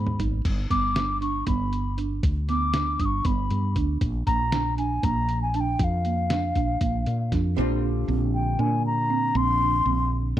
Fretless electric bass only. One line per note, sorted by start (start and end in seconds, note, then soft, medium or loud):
0.00 0.18 G#2 medium
0.20 0.43 G#1 medium
0.45 0.69 G1 medium
0.70 1.43 G1 medium
1.47 2.19 G1 medium
2.23 2.96 D2 medium
3.00 3.23 G1 medium
3.25 3.49 G1 medium
3.51 3.74 G2 medium
3.76 3.99 D2 medium
4.01 4.25 A#1 medium
4.27 4.99 A#1 medium
5.03 5.76 A#1 medium
5.80 6.52 F2 medium
6.56 6.79 A#1 medium
6.81 7.05 A#1 medium
7.07 7.30 A#2 medium
7.32 7.56 F2 medium
7.58 8.05 A#1 medium
8.08 8.55 A#1 medium
8.59 9.31 A#2 medium
9.35 9.82 A#1 medium
9.86 10.33 A#1 medium
10.37 10.40 A#2 loud